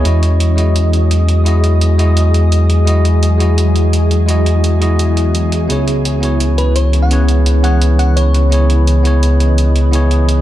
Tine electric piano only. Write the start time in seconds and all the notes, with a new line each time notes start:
0.03 G#3 E4 F#4
0.07 D#5
0.56 G#3 E4 F#4
0.60 D#5
1.44 G#3 E4 F#4
1.48 D#5
1.98 G#3 E4 F#4 D#5
2.85 G#3 E4 F#4
2.89 D#5
3.38 G#3 E4 F#4
3.42 D#5
4.26 G#3 E4 F#4
4.31 D#5
4.81 G#3 E4 F#4 D#5
5.68 B3 E4 G#4
5.72 C#5
6.21 B3 E4 G#4
6.25 C#5
7.09 B3 E4 G#4
7.13 C#5
7.63 B3 E4 G#4 C#5
8.50 B3 E4 G#4
8.54 C#5
9.03 B3 E4 G#4
9.07 C#5
9.91 B3 E4 G#4
9.95 C#5